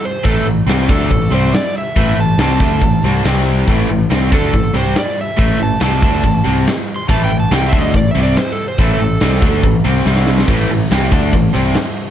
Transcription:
0.05 C5, open hi-hat
0.24 A1 A2 E3 A3 A4, kick, open hi-hat
0.46 A1 A2 E3, open hi-hat
0.66 C2 C3 G3 C4, snare, open hi-hat
0.88 D2 D3 A3 D4 A4, kick, open hi-hat
1.10 A1 A2 E3, kick, open hi-hat
1.30 C2 C3 G3 C4 C5, open hi-hat
1.54 D5, snare, open hi-hat
1.75 E5, open hi-hat
1.96 A1 A2 E3 A3, kick, open hi-hat
2.17 A1 A2 E3 A5, open hi-hat
2.38 C2 C3 G3 C4 A5, snare, open hi-hat
2.60 D2 D3 A3 D4, kick, open hi-hat
2.81 A1 A2 E3, kick, open hi-hat
3.03 C2 C3 G3 C4, open hi-hat
3.25 C2 C3 G3 C4, snare, open hi-hat
3.46 open hi-hat
3.68 A1 A2 E3 A3, kick, open hi-hat
3.89 A1 A2 E3, open hi-hat
4.10 C2 C3 G3 C4, snare, open hi-hat
4.32 D2 D3 A3 D4 A4, kick, open hi-hat
4.54 A1 A2 E3, kick, open hi-hat
4.74 C2 C3 G3 C4 C5, open hi-hat
4.95 D5, snare, open hi-hat
5.17 E5, open hi-hat
5.37 A1 A2 E3 A3, kick, open hi-hat
5.59 A1 A2 E3 A5, open hi-hat
5.80 C2 C3 G3 C4 A5, snare, open hi-hat
6.02 D2 D3 A3 D4, kick, open hi-hat
6.23 A1 A2 E3, kick, open hi-hat
6.44 C2 C3 G3 C4, open hi-hat
6.67 snare, open hi-hat
6.88 open hi-hat
6.96 C6
7.09 A1 A2 E3 A3 A5, kick, open hi-hat
7.25 G5
7.30 A1 A2 E3, open hi-hat
7.40 A5
7.51 C2 C3 G3 C4 G5, snare, open hi-hat
7.69 D2 D3 A3 E5, kick
7.73 D4, open hi-hat
7.81 D#5
7.94 A1 A2 E3 D5, kick, open hi-hat
8.11 C3 E5
8.15 C2 G3 C4, open hi-hat
8.23 D5
8.36 C5, snare, open hi-hat
8.52 A4
8.57 open hi-hat
8.68 C5
8.78 A1 A2 E3 A3 A4, kick, open hi-hat
8.94 A4
8.99 A1 A2 E3, open hi-hat
9.20 C2 C3 G3 C4, snare, open hi-hat
9.42 D2 D3 A3 D4, kick, open hi-hat
9.63 A1 A2 E3, kick, open hi-hat
9.84 C2 C3 G3 C4, open hi-hat
10.05 C2 C3 G3 C4, snare
10.16 snare
10.27 snare
10.38 snare
10.48 A1 A2 E3 A3, kick, crash
10.69 A1 A2 E3, crash
10.91 C2 C3 G3 C4, snare, crash
11.12 D2 D3 A3 D4, kick, crash
11.33 A1 A2 E3, kick, crash
11.54 C2 C3 G3 C4, crash
11.74 snare, crash
11.97 crash

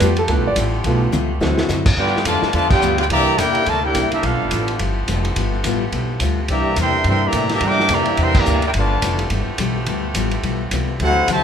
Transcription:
Already playing: F3 A3 B3 G4
0.00 F2 G3 B3 F4 G4 A4, kick, hi-hat pedal, ride
0.16 A4, ride
0.26 D2 G3 A3 B3 F4 A#4, kick, ride
0.31 A4 B4
0.37 B1
0.46 G1 D5
0.56 A1 G3 B3 F4 A4, kick, hi-hat pedal, ride
0.84 B1 G3 A3 B3 F4 A4, kick, ride
1.12 C#2 G3 B3 F4 A4, hi-hat pedal, high tom
1.40 D2 D3 F#3 C4 E4 F#4 A4, snare
1.58 snare
1.68 F#2 D3 C4 F#4 A4, snare, hi-hat pedal
1.86 kick, crash
1.96 G2 F3 G3 A3 B3 D4 F4 G4 A4 B4 D5 G5, kick
2.06 snare
2.16 snare
2.25 F2 D3 F3 G3 A3 B3 F4 A4 B4 D5 A5, kick, hi-hat pedal, ride
2.42 muted upright bass stroke, snare
2.53 E2 D3 F3 G3 A3 B3 F4 A4 B4 D5 A5, kick, ride
2.69 B3 D4 F4 G4 B4 D5 G5, kick, crash
2.81 D2 G3 B3 F4 A4, hi-hat pedal
2.97 B3 D4 F4 G4 B4 D5 G5, ride
3.08 C2 C3 D3 E3 G3 A#3 C4 D4 E4 G4 D5 E5 A#5, kick, ride
3.38 E2 C3 A#3 D4 E4 G4 A#4 D5 G5, kick, hi-hat pedal, ride
3.55 ride
3.66 D2 C3 A3 A#3 D4 E4 F4 A#4 D5 A5, kick, ride
3.83 A#3 E4 G4 A#4 D5 G5
3.95 C2 C3 A#3 D4 E4, kick, hi-hat pedal, ride
4.11 G3 A#3 D4 E4 G4 A#4 E5, muted upright bass stroke, ride
4.22 B1 F3 G3 A3 B3 D4 F4 G4 A4 B4 F5, kick, ride
4.34 G1
4.43 F1
4.51 A1 G3 B3 F4 A4, kick, hi-hat pedal, ride
4.68 ride
4.79 G1 G3 B3 F4 A4, kick, ride
5.08 F1 G3 B3 F4 A4, kick, hi-hat pedal, ride
5.25 ride
5.36 G1 G3 B3 F4 A4, kick, ride
5.64 A1 G3 B3 F4 A4, kick, hi-hat pedal, ride
5.92 B1 G3 B3 F4 A4, kick, ride
6.20 D2 G3 B3 F4 A4, kick, hi-hat pedal, ride
6.48 C2 C3 D3 E3 G3 A#3 C4 D4 E4 G4 D5 E5 A#5, kick, ride
6.76 E2 C3 E3 G3 A#3 C4 D4 E4 A#4 E5 G5 C6, kick, hi-hat pedal, ride
7.04 G2 C3 E3 G3 A#3 C4 D4 E4, kick, ride
7.08 A#4 E5 G5 C6
7.24 E3 G3 A#3 G4 D5 E5 A#5
7.33 A2 C3 A#3 D4 E4, kick, hi-hat pedal, ride
7.49 E3 G3 A#3 E5 A#5, snare, ride
7.53 G4 D5
7.61 G2 C3 G3 A#3 D4 E4, kick, ride
7.65 A#4 E5 G5 D6
7.70 snare
7.80 snare
7.89 F2 C3 E3 G3 A#3 D4 E4 G4, kick, hi-hat pedal, ride
7.93 A#3 D5 E5 A#5
8.05 ride
8.17 E2 C3 E3 G3 A#3 C4 D4 E4, kick, ride
8.22 A#4 E5 G5 C6
8.35 E3 G3 A#3 G4 D5, kick, crash
8.39 E5 A#5
8.46 D2 C3 A#3 D4 E4, hi-hat pedal
8.62 A#3 E4 G4, ride
8.66 E4 A#4 D5 G5
8.74 G1 D3 F3 G3 A3 B3 F4 G4 A4 B4 D5 A5, kick, ride
9.02 F1 G3 B3 F4 A4, kick, hi-hat pedal, ride
9.19 ride
9.30 G1 G3 B3 F4 A4, kick, ride
9.48 muted upright bass stroke
9.58 B1 G3 B3 F4 A4, kick, hi-hat pedal, ride
9.86 D2 G3 B3 F4 A4, kick, ride
10.15 A1 G3 B3 F4 A4, kick, hi-hat pedal, ride
10.31 ride
10.43 B1 G3 B3 F4 A4, kick, ride
10.71 C2 G3 B3 F4 A4, kick, hi-hat pedal, ride
10.99 D2 D3 F#3 A3 C4 E4 F#4 A4, kick, ride
11.03 E4 C5 F#5
11.28 F#2 C3 D3 F#3 A3 C4 E4 F#4, kick, hi-hat pedal, ride
11.32 C5 E5 A5
11.37 D2

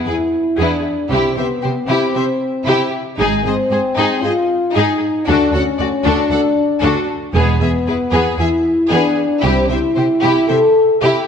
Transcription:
0.06 E2 E4 G#4 B4
0.58 E2 B3 D4 E4 G#4
1.10 C2 C3 C4 E4 G4
1.36 C3 B3 G4 C5 E5
1.62 C3 G4 C5
1.87 C3 C4 E4 G4
2.15 C3 G4 C5 E5
2.66 C3 E4 G4
3.19 G#1 G#2 G#3 D#4 G#4
3.44 G#2 C4 G#4 C5 D#5
3.71 G#2 G#4 C5
3.97 G#2 D#4 G#4
4.21 G#2 F4 G#4 C5 D#5
4.74 G#2 D#4 G#4
5.26 D2 D4 F#4 A4
5.53 D2 C#4 F#4 A4 F#5
5.79 D2 F#4 D5
6.04 D2 D4 F#4 A4
6.31 D2 F#4 A4 F#5
6.81 D2 D4 F#4 A4
7.33 E1 E2 G#3 B3 G#4
7.60 E2 B3 G#4 E5
7.87 E2 E4 G#4 B4
8.12 E2 B3 G#4
8.38 E2 E4 G#4 E5
8.90 E2 B3 D4 G#4
9.43 C2 C3 C4 E4 G4
9.68 C3 E4 G4 C5 E5
9.96 C3 G4 C5
10.22 C3 E4 G4
10.48 C3 G4 A4 C5 E5
11.01 C3 E4 G4

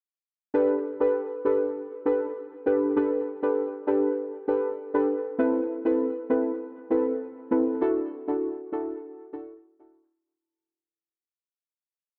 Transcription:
0.54 D4 G4 A4 B4
1.00 D4 G4 A4 B4
1.45 D4 G4 A4 B4
2.06 D4 G4 A4 B4
2.66 D4 G4 A4 B4
2.96 D4 G4 A4 B4
3.43 D4 G4 A4 B4
3.87 D4 G4 A4 B4
4.48 D4 G4 A4 B4
4.94 D4 G4 A4 B4
5.39 C4 E4 A4 B4
5.85 C4 E4 A4 B4
6.30 C4 E4 A4 B4
6.90 C4 E4 A4 B4
7.51 C4 E4 A4 B4
7.81 D4 E4 F#4 A4
8.28 D4 E4 F#4 A4
8.72 D4 E4 F#4 A4
9.33 D4 E4 F#4 A4
9.79 D4 E4 F#4 A4

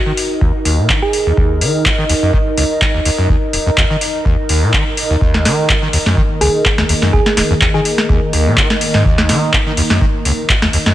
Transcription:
Already playing: D#4 F#4 A#4 D#5
0.06 D#3
0.17 open hi-hat
0.41 D#2, kick
0.65 D#2, open hi-hat
0.78 A#2
0.89 D#3, kick, clap
1.02 G#4
1.13 open hi-hat
1.26 D#2
1.37 D#2, kick
1.61 D#3, open hi-hat
1.85 C#3, kick, clap
1.98 D#3
2.09 D#2, open hi-hat
2.22 F#2
2.33 D#3, kick
2.57 C#2, open hi-hat
2.81 kick, clap
2.94 D#2
3.05 D#2, open hi-hat
3.18 F#2
3.29 D#2, kick
3.53 D#1, open hi-hat
3.66 F2
3.77 D#2, kick, clap
3.90 D#3
4.01 open hi-hat
4.25 D#2, kick
4.49 D#2, open hi-hat
4.62 A#2
4.73 D#3, kick, clap
4.97 open hi-hat
5.10 D#2
5.21 D#2 D#3 A#3 A#4 D#5, kick
5.34 snare
5.45 D#3, snare, open hi-hat
5.69 C#3, kick, clap
5.82 D#3
5.93 D#2, open hi-hat
6.06 F#2, snare
6.17 D#3, kick
6.41 C#2 G#4, open hi-hat
6.65 kick, clap
6.78 D#2, snare
6.89 D#2, open hi-hat
7.02 F#2, snare
7.13 D#2 G#4, kick
7.26 snare
7.37 D#1, snare, open hi-hat
7.50 F2
7.61 D#2, kick, clap
7.74 D#3 G#4
7.85 open hi-hat
7.98 snare
8.09 D#2, kick
8.33 D#2, open hi-hat
8.46 A#2
8.57 D#3, kick, clap
8.70 snare
8.81 open hi-hat
8.94 G#2, snare
9.05 D#2, kick
9.18 snare
9.29 D#3, snare, open hi-hat
9.53 C#3, kick, clap
9.66 D#3
9.77 D#2, open hi-hat
9.90 F#2, snare
10.01 D#3, kick
10.25 C#2, open hi-hat
10.49 kick, clap
10.62 D#2, snare
10.73 D#2, open hi-hat
10.86 F#2, snare

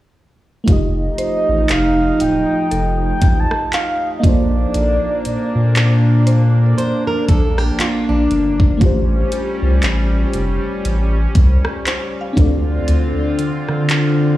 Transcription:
0.64 F1 F3 A3 D#4, kick, closed hi-hat
0.68 F4 G4
0.72 D#5
1.18 C5 D#5, closed hi-hat
1.49 A1
1.69 F1 F5, clap, closed hi-hat
2.20 D1 G5, closed hi-hat
2.71 F1 A4, closed hi-hat
3.06 G5
3.22 A1, kick, closed hi-hat
3.40 A5
3.51 cross-stick
3.73 F5, clap, closed hi-hat
4.19 A#3 D4 D#5
4.24 A#1 A#3 D4 F4 A4 D5, kick, closed hi-hat
4.28 C5
4.74 A#1, closed hi-hat
5.25 A#2, closed hi-hat
5.55 A#2
5.76 clap, closed hi-hat
6.27 C5, closed hi-hat
6.78 C5, closed hi-hat
7.07 A#4
7.29 A#1 A4, kick, closed hi-hat
7.58 G4, cross-stick
7.79 F4, clap, closed hi-hat
8.09 A#1 D4
8.31 G1, closed hi-hat
8.60 kick
8.77 A3 C#4, kick, closed hi-hat
8.81 A1 G3 C#4 F4 G4
8.85 C5
9.32 G4, closed hi-hat
9.62 C2
9.83 A1, clap, closed hi-hat
10.33 F1, closed hi-hat
10.85 A1, closed hi-hat
11.35 C2, kick, closed hi-hat
11.65 cross-stick
11.86 C5, clap, closed hi-hat
12.21 F5
12.33 D3 C4 D4 F4, kick
12.37 D2 F4 A4, closed hi-hat
12.41 D5
12.88 D2, closed hi-hat
13.39 D3, closed hi-hat
13.69 D3, cross-stick
13.90 clap, closed hi-hat

